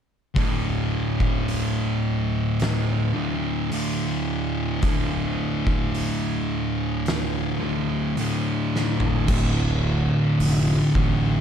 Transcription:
0.34 distorted electric guitar D2 A2 D3, kick, open hi-hat
1.20 kick
1.48 open hi-hat
2.60 snare, open hi-hat
3.14 distorted electric guitar D2 A2 D3
3.70 distorted electric guitar D2 A2 D3, open hi-hat
4.81 distorted electric guitar D2 A2 D3, kick, open hi-hat
5.67 kick
5.95 open hi-hat
7.06 snare, open hi-hat
7.61 distorted electric guitar D2 A2 D3
8.16 distorted electric guitar D2 A2 D3, open hi-hat
8.76 snare
9.00 floor tom
9.28 fingered electric bass D1, distorted electric guitar D2 A2 D3, kick, crash
10.39 fingered electric bass F1, open hi-hat
10.94 fingered electric bass A1, distorted electric guitar D2 A2 D3, kick

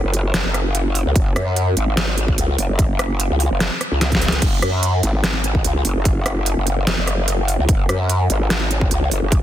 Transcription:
0.04 wobble bass F#1
0.14 closed hi-hat
0.34 snare, closed hi-hat
0.45 wobble bass F#1
0.54 cross-stick, closed hi-hat
0.75 closed hi-hat
0.95 open hi-hat
1.06 wobble bass C#2
1.16 wobble bass F#1, kick, closed hi-hat
1.36 wobble bass F#2, cross-stick, closed hi-hat
1.56 closed hi-hat
1.77 wobble bass G#1, closed hi-hat
1.97 snare, closed hi-hat
2.18 closed hi-hat
2.28 kick
2.38 wobble bass C#2, closed hi-hat
2.58 wobble bass F#1, open hi-hat
2.69 wobble bass F#1
2.79 kick, closed hi-hat
2.99 cross-stick, closed hi-hat
3.20 closed hi-hat
3.30 wobble bass C#2
3.40 open hi-hat
3.51 wobble bass F#1
3.60 snare, closed hi-hat
3.81 cross-stick, closed hi-hat
3.91 wobble bass C#2
4.01 snare, closed hi-hat
4.12 kick, snare, closed hi-hat
4.22 open hi-hat
4.28 snare, closed hi-hat
4.42 wobble bass F#1, kick, closed hi-hat, crash
4.62 wobble bass F#2, cross-stick, closed hi-hat
4.83 closed hi-hat
5.03 wobble bass G#1, closed hi-hat
5.24 snare, closed hi-hat
5.44 closed hi-hat
5.55 kick
5.64 wobble bass C#2, closed hi-hat
5.85 wobble bass F#1, open hi-hat
5.96 wobble bass F#1
6.05 kick, closed hi-hat
6.26 cross-stick, closed hi-hat
6.46 closed hi-hat
6.57 wobble bass F#1
6.67 closed hi-hat
6.87 snare, closed hi-hat
6.98 wobble bass F#1
7.07 cross-stick, closed hi-hat
7.28 closed hi-hat
7.48 open hi-hat
7.59 wobble bass C#2
7.69 wobble bass F#1, kick, closed hi-hat
7.89 wobble bass F#2, cross-stick, closed hi-hat
8.09 closed hi-hat
8.30 wobble bass G#1, closed hi-hat
8.50 snare, closed hi-hat
8.71 closed hi-hat
8.81 kick
8.91 wobble bass C#2, closed hi-hat
9.11 wobble bass F#1, open hi-hat
9.22 wobble bass F#1
9.32 kick, closed hi-hat

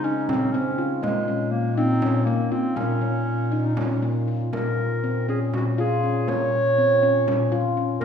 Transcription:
Already playing: bass clarinet C#3
0.04 clarinet C#4, handpan D#4
0.29 clarinet C4, handpan C#4, frame drum
0.52 handpan C4, clarinet C#4
0.78 handpan F4
1.02 bass clarinet A#2, clarinet G#3, handpan A#3, frame drum
1.28 handpan C#4, frame drum
1.51 clarinet A#3
1.76 clarinet C4, handpan D#4
2.02 handpan C#4, frame drum
2.25 clarinet A#3, handpan A#3
2.51 clarinet C4, handpan F4
2.76 bass clarinet A#2, handpan A#3, clarinet C#4, frame drum
3.01 handpan C#4
3.27 frame drum
3.52 handpan D#4, frame drum
3.66 clarinet D#4
3.75 clarinet C#4, handpan C#4, frame drum
3.84 clarinet C4
3.93 clarinet C#4
4.02 handpan A#3
4.28 handpan F4, frame drum
4.53 bass clarinet A#2, handpan A#3, clarinet A#4, frame drum
5.04 handpan C4, frame drum
5.29 handpan C#4, clarinet G#4
5.54 handpan C#4, clarinet F#4, frame drum
5.78 handpan F4, clarinet G#4
6.03 handpan C#4
6.28 handpan A#3, clarinet C#5, frame drum
6.78 handpan C4, frame drum
7.03 handpan C#4
7.27 handpan C#4, frame drum
7.52 handpan F4
7.77 handpan C#4
8.01 bass clarinet A#2, handpan A#3, clarinet A#4, frame drum

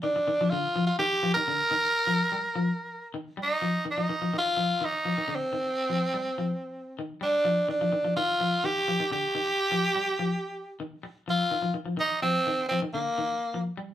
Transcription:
0.03 clean electric guitar D#3, tenor saxophone D4
0.16 muted clean electric guitar stroke
0.28 clean electric guitar D#3
0.41 clean electric guitar F3
0.50 clean electric guitar D3, tenor saxophone F4
0.76 clean electric guitar F3
0.87 tenor saxophone F4
0.99 clean electric guitar D#3, tenor saxophone G4
1.23 clean electric guitar F3
1.34 clean electric guitar D#3, tenor saxophone A#4
1.48 clean electric guitar D3
1.71 clean electric guitar D#3
2.07 clean electric guitar F3
2.32 clean electric guitar G3
2.56 clean electric guitar F3
3.14 clean electric guitar D#3
3.37 clean electric guitar G3
3.43 tenor saxophone D#4
3.62 clean electric guitar F3
3.85 clean electric guitar D#3
3.91 tenor saxophone D#4
3.98 clean electric guitar F3
4.09 clean electric guitar D#3
4.22 clean electric guitar F3
4.34 clean electric guitar D#3
4.38 tenor saxophone F4
4.57 clean electric guitar F3
4.81 clean electric guitar D#3, tenor saxophone D#4
5.05 clean electric guitar F3
5.18 clean electric guitar D#3
5.28 clean electric guitar D3
5.35 tenor saxophone C4
5.53 clean electric guitar D#3
5.90 clean electric guitar F3
6.14 clean electric guitar G3
6.38 clean electric guitar F3
6.99 clean electric guitar D#3
7.21 clean electric guitar G3, tenor saxophone D4
7.45 clean electric guitar F3
7.69 clean electric guitar D#3, tenor saxophone D4
7.81 clean electric guitar F3
7.92 clean electric guitar D#3
8.05 clean electric guitar F3
8.17 clean electric guitar D#3, tenor saxophone F4
8.41 clean electric guitar F3
8.64 clean electric guitar D#3, tenor saxophone G4
8.88 clean electric guitar F3
9.00 clean electric guitar D#3
9.12 clean electric guitar D3, tenor saxophone G4
9.35 clean electric guitar D#3
9.72 clean electric guitar F3
9.95 clean electric guitar G3
10.19 clean electric guitar F3
10.80 clean electric guitar D#3
11.03 muted clean electric guitar stroke
11.28 clean electric guitar F3, tenor saxophone F4
11.51 clean electric guitar D#3
11.62 clean electric guitar F3
11.74 clean electric guitar D#3
11.86 clean electric guitar F3
11.97 clean electric guitar D#3, tenor saxophone D#4
12.22 clean electric guitar F3, tenor saxophone C4
12.47 clean electric guitar D#3
12.69 clean electric guitar F3, tenor saxophone C4
12.82 clean electric guitar D#3
12.94 clean electric guitar D3, tenor saxophone A#3
13.18 clean electric guitar D#3
13.54 clean electric guitar F3
13.77 clean electric guitar G3

